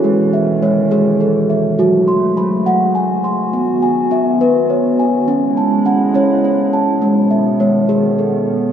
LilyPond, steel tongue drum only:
<<
  \new Staff \with { instrumentName = "Steel tongue drum" } { \time 6/8 \key gis \phrygian \tempo 4. = 69 << { e'16 r16 e''8 cis''4 a'8 e''8~ | e''8 bis''8 b''4 gis''8 bis''8~ | bis''8 gis''8 e''4 cis''8 gis''8~ | gis''8 a''8 fis''4 dis''8 a''8~ |
a''8 e''8 cis''4 a'4 | } \\ { gis4 r8 gis'4 r8 | fis'4 r8 fis''4 r8 | b4 r8 b'4 r8 | r4. cis''4 r8 |
r4. gis'4 r8 | } >> }
  \new Staff \with { instrumentName = "Steel tongue drum" } { \clef bass \time 6/8 \key gis \phrygian r4 gis16 r16 gis8 r4 | fis4 fis16 r16 fis8 r4 | r4 b16 r16 b8 r4 | cis'4 cis'16 r16 cis'8 r4 |
gis4 gis16 r16 gis8 r4 | }
>>